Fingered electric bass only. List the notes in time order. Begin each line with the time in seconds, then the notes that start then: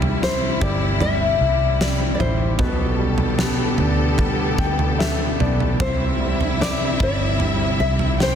Already playing: C2
0.62 G1
1.41 C2
2.20 A1
2.60 B1
3.79 D2
4.59 D2
5.40 B1
5.80 C2
7.00 G1
7.80 C2